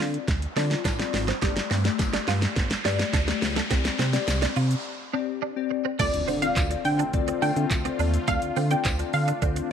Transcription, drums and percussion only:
0.00 snare, tambourine
0.14 closed hi-hat
0.28 kick, snare, closed hi-hat, tambourine
0.42 closed hi-hat
0.56 snare, open hi-hat, tambourine
0.71 snare, closed hi-hat
0.85 kick, snare, closed hi-hat, tambourine
0.99 snare, closed hi-hat
1.14 snare, open hi-hat, tambourine
1.28 snare, closed hi-hat
1.42 kick, snare, closed hi-hat, tambourine
1.56 snare, closed hi-hat
1.71 snare, open hi-hat, tambourine
1.85 snare, closed hi-hat
1.99 kick, snare, closed hi-hat, tambourine
2.13 snare, closed hi-hat
2.28 snare, open hi-hat
2.42 snare, closed hi-hat
2.56 kick, snare, closed hi-hat
2.71 snare, closed hi-hat
2.85 snare, open hi-hat, tambourine
2.99 snare, closed hi-hat
3.13 kick, snare, closed hi-hat, tambourine
3.28 snare, closed hi-hat
3.42 snare, open hi-hat, tambourine
3.56 snare, closed hi-hat
3.71 kick, snare, closed hi-hat, tambourine, shaker
3.85 snare, closed hi-hat, shaker
3.99 snare, open hi-hat, tambourine, shaker
4.13 snare, closed hi-hat, shaker
4.28 snare, closed hi-hat, tambourine, shaker
4.42 snare, closed hi-hat, shaker
4.56 open hi-hat, tambourine, shaker
4.71 closed hi-hat, shaker
5.99 kick, closed hi-hat, crash, tambourine, shaker
6.14 closed hi-hat, shaker
6.28 open hi-hat, tambourine, shaker
6.42 closed hi-hat, shaker
6.56 kick, clap, closed hi-hat, tambourine, shaker
6.71 closed hi-hat, shaker
6.85 open hi-hat, tambourine, shaker
6.99 closed hi-hat, shaker
7.13 kick, closed hi-hat, shaker
7.28 closed hi-hat, shaker
7.42 open hi-hat, tambourine, shaker
7.56 closed hi-hat, shaker
7.71 kick, clap, closed hi-hat, tambourine, shaker
7.85 closed hi-hat, shaker
7.99 open hi-hat, tambourine, shaker
8.14 closed hi-hat, shaker
8.28 kick, closed hi-hat, tambourine, shaker
8.42 closed hi-hat, shaker
8.56 open hi-hat, tambourine, shaker
8.71 closed hi-hat, shaker
8.85 kick, clap, closed hi-hat, tambourine, shaker
8.99 closed hi-hat, shaker
9.13 open hi-hat, tambourine, shaker
9.28 closed hi-hat, shaker
9.42 kick, closed hi-hat, shaker
9.56 closed hi-hat, shaker

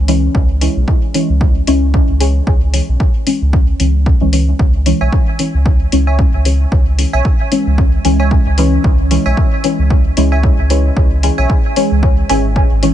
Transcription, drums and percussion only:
0.08 open hi-hat
0.35 kick
0.61 open hi-hat
0.88 kick
1.14 open hi-hat
1.41 kick
1.67 open hi-hat
1.94 kick
2.20 open hi-hat
2.47 kick
2.74 open hi-hat
3.00 kick
3.27 open hi-hat
3.53 kick
3.80 open hi-hat
4.06 kick
4.33 open hi-hat
4.59 kick
4.86 open hi-hat
5.12 kick
5.39 open hi-hat
5.66 kick
5.92 open hi-hat
6.19 kick
6.45 open hi-hat
6.72 kick
6.99 open hi-hat
7.25 kick
7.52 open hi-hat
7.78 kick
8.05 open hi-hat
8.31 kick
8.58 open hi-hat
8.84 kick
9.11 open hi-hat
9.37 kick
9.64 open hi-hat
9.90 kick
10.17 open hi-hat
10.43 kick
10.70 open hi-hat
10.97 kick
11.23 open hi-hat
11.50 kick
11.76 open hi-hat
12.03 kick
12.29 open hi-hat
12.56 kick
12.83 open hi-hat

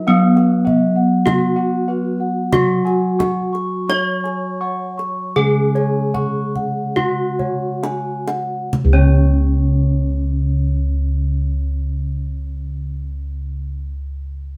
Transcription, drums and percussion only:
0.37 kendang slap
0.67 kendang low
1.27 kendang high, kendang low
2.53 kendang high, kendang low
2.87 kendang slap
3.20 kendang high, kendang low
3.55 kendang slap
3.90 kendang high
4.25 kendang slap
4.99 kendang slap
5.76 kendang slap
6.15 kendang low
6.56 kendang low
6.97 kendang low
7.39 kendang low
7.83 kendang high
8.28 kendang high
8.73 kendang low

